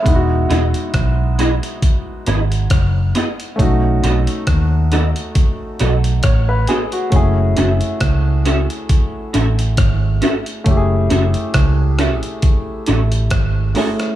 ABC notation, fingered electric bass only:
X:1
M:4/4
L:1/16
Q:"Swing 16ths" 1/4=68
K:F#dor
V:1 name="Fingered electric bass" clef=bass
E,,,2 E,,, z B,,,3 z3 G,,,2 F,,,2 z2 | B,,,2 B,,, z D,,3 z3 B,,,2 A,,,2 z2 | F,,,2 F,,, z C,,3 z3 A,,,2 G,,,2 z2 | F,,,2 F,,, z C,,3 z3 A,,,2 G,,,2 z2 |]